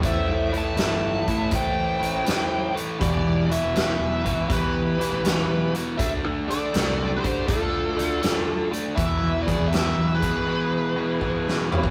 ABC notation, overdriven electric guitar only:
X:1
M:4/4
L:1/8
Q:"Swing" 1/4=80
K:Ephr
V:1 name="Overdriven electric guitar" clef=bass
[A,,E,A,] [A,,E,A,] [A,,E,A,] [A,,E,A,] [A,,E,A,] [A,,E,A,] [A,,E,A,] [A,,E,A,] | [E,,B,,E,] [E,,B,,E,] [E,,B,,E,] [E,,B,,E,] [E,,B,,E,] [E,,B,,E,] [E,,B,,E,] [E,,B,,E,] | [D,A,D] [D,A,D] [D,A,D] [D,A,D] [D,A,D] [D,A,D] [D,A,D] [D,A,D] | [E,,B,,E,] [E,,B,,E,] [E,,B,,E,] [E,,B,,E,] [E,,B,,E,] [E,,B,,E,] [E,,B,,E,] [E,,B,,E,] |]